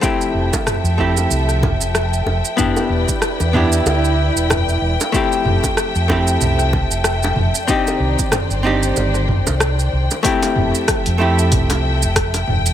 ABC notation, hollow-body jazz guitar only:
X:1
M:4/4
L:1/8
Q:"Swing 16ths" 1/4=94
K:Flyd
V:1 name="Hollow-body jazz guitar"
[A,CEG]3 [A,CEG]4- [A,CEG] | [B,DEG]3 [B,DEG]4- [B,DEG] | [A,CEG]3 [A,CEG]4- [A,CEG] | [CD_EG]3 [CDEG]4- [CDEG] |
[A,CEG]3 [A,CEG]4- [A,CEG] |]